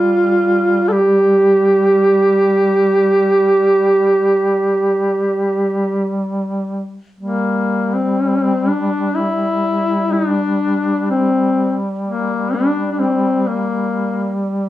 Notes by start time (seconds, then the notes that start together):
Already playing: G3 F4
0.88 A4
0.92 G4
7.17 G3 A#3
7.94 C4
8.69 D4
9.15 E4
10.13 D4
11.10 C4
12.07 A#3
12.54 D4
12.92 D4
12.99 C4
13.47 A#3